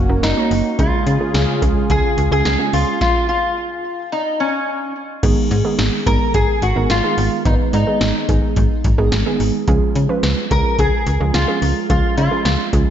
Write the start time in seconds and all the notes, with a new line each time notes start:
Already playing: A#3 C#4 F#4
0.09 F#1 A#3 C#4 F#4 A#4
0.23 F#1 D#4, snare, closed hi-hat
0.37 A#3 C#4 F#4 C#5
0.51 F#1, open hi-hat
0.79 C#2 C#3 G#3 C#4 F4 G#4, kick, closed hi-hat
1.07 C#3, closed hi-hat
1.21 G#3 C#4 F4 G#4
1.34 C#2, snare, closed hi-hat
1.62 C#2 G#3 C#4 F4 G#4, kick, closed hi-hat
1.90 C#2 G#4, kick, closed hi-hat
2.18 C#2, closed hi-hat
2.31 C#2 G#3 C#4 F4 G#4
2.45 C#2, snare, closed hi-hat
2.59 G#3 C#4 F4 G#4
2.73 C#2 F4, open hi-hat
3.01 F4, kick, snare
3.29 F4
4.12 D#4
4.40 C#4
5.23 G#1 D#3 G#3 B3 D#4 G#4, kick, closed hi-hat, crash
5.51 G#2, closed hi-hat
5.65 D#3 G#3 B3 D#4 G#4
5.79 G#1, snare, closed hi-hat
6.06 G#1 D#3 G#3 B3 D#4 G#4 A#4, kick, closed hi-hat
6.34 G#1 G#4, kick, closed hi-hat
6.62 G#1 F#4, closed hi-hat
6.76 G#1 D#3 G#3 B3 D#4 A#4
6.90 G#1 F4, snare, closed hi-hat
7.04 D#3 G#3 B3 D#4 G#4
7.18 G#1, open hi-hat
7.45 G#1 D#3 G#3 B3 D#4 B4, kick, closed hi-hat
7.73 G#2 D#4, closed hi-hat
7.87 D#3 G#3 B3 D#4 G#4
8.01 G#1, snare, closed hi-hat
8.29 G#1 D#3 G#3 B3 D#4 G#4, kick, closed hi-hat
8.56 G#1, kick, closed hi-hat
8.84 G#1, kick, closed hi-hat
8.98 G#1 D#3 G#3 B3 D#4 G#4
9.12 G#1, snare, closed hi-hat
9.26 D#3 G#3 B3 D#4 G#4
9.40 G#1, open hi-hat
9.68 C#2 F3 G#3 C#4 F4 G#4, kick, closed hi-hat
9.95 C#3, closed hi-hat
10.09 F3 G#3 C#4 F4 B4
10.23 C#2, snare, closed hi-hat
10.51 C#2 F3 G#3 C#4 F4 G#4 A#4, kick, closed hi-hat
10.79 C#2 G#4, kick, closed hi-hat
11.07 C#2, closed hi-hat
11.20 C#2 F3 G#3 C#4 F4 G#4
11.34 C#2 F4, snare, closed hi-hat
11.48 F3 G#3 C#4 F4 G#4
11.62 C#2, open hi-hat
11.90 C#2 F3 G#3 C#4 F4 G#4, kick, closed hi-hat
12.18 C#3 F4, closed hi-hat
12.31 F3 G#3 C#4 F4 G#4
12.45 C#2, snare, closed hi-hat
12.73 C#2 F3 G#3 C#4 F4 G#4, kick, closed hi-hat